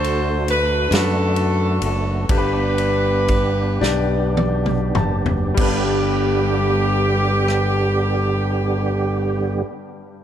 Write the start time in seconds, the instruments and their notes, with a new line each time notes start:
Already playing: fingered electric bass D2, grand piano D3 D4 F#4 A4, tonewheel organ A3 D4 F#4, saxophone section F#4 A4 C5
0.04 ride
0.48 saxophone section B4, ride
0.91 fingered electric bass F#2, grand piano D4 F#4 B4, saxophone section D4 F#4 A4, snare, ride
1.36 ride
1.82 fingered electric bass F#1, saxophone section A4, ride
2.29 fingered electric bass G1, grand piano G2 D4 G4 A4, tonewheel organ B3 D4 G4, saxophone section D4 G4 B4, kick, ride
2.37 grand piano B4
2.78 ride
3.28 kick, ride
3.81 fingered electric bass B1, grand piano D4 G4 D5, snare
4.37 grand piano D5, high tom
4.66 mid tom
4.95 fingered electric bass F#1, grand piano A5, mid tom
5.26 floor tom
5.54 fingered electric bass G1, grand piano G3 B3, tonewheel organ B3, saxophone section G4, kick, crash
5.58 grand piano G2 D4 B4, tonewheel organ D3 G3 G4
7.48 cross-stick